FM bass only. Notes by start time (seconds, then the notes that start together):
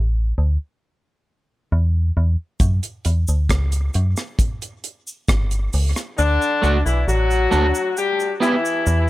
Already playing: A1
0.38 D2
1.72 E2
2.17 E2
2.61 F#2
3.06 E2
3.29 D2
3.50 C#2
3.95 F#2
5.29 G1
5.74 C#2
6.19 D2
6.64 C#2
6.86 B1
7.08 A1
7.53 D2
8.87 E2